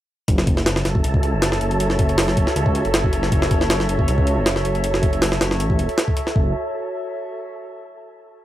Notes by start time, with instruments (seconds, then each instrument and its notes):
0.28 detuned saw bass F#1, ambient pad F#4 A4 C#5 E5, synth texture A4 A5, kick, closed hi-hat
0.38 snare
0.47 kick, closed hi-hat
0.57 snare
0.66 snare, closed hi-hat
0.76 snare
0.85 detuned saw bass F#1, snare, closed hi-hat
0.95 kick
1.04 detuned saw bass C#2, closed hi-hat
1.14 kick
1.23 closed hi-hat
1.33 detuned saw bass F#1
1.42 snare, closed hi-hat
1.52 snare
1.61 detuned saw bass F#1, closed hi-hat
1.71 closed hi-hat
1.80 closed hi-hat
1.90 snare
1.99 kick, closed hi-hat
2.09 closed hi-hat
2.18 snare, open hi-hat
2.28 snare
2.37 detuned saw bass F#1, kick, closed hi-hat
2.47 snare
2.56 detuned saw bass C#2, closed hi-hat
2.66 kick
2.75 closed hi-hat
2.85 detuned saw bass F#1, closed hi-hat
2.94 snare, closed hi-hat
3.04 kick
3.13 closed hi-hat
3.23 snare
3.32 detuned saw bass F#1, kick, closed hi-hat
3.42 snare
3.51 kick, closed hi-hat
3.61 snare
3.70 snare, closed hi-hat
3.80 snare
3.89 detuned saw bass F#1, closed hi-hat
3.99 kick
4.08 detuned saw bass C#2, closed hi-hat
4.18 kick
4.27 closed hi-hat
4.37 detuned saw bass F#1
4.46 snare, closed hi-hat
4.56 snare
4.65 detuned saw bass F#1, closed hi-hat
4.75 closed hi-hat
4.84 closed hi-hat
4.94 snare
5.03 kick, closed hi-hat
5.13 closed hi-hat
5.22 snare, open hi-hat
5.32 snare
5.41 detuned saw bass F#1, snare, closed hi-hat
5.51 snare
5.60 detuned saw bass A1, closed hi-hat
5.70 kick
5.79 detuned saw bass E1, closed hi-hat
5.89 closed hi-hat
5.98 snare, closed hi-hat
6.08 kick
6.17 closed hi-hat
6.27 snare
6.36 detuned saw bass F#1, kick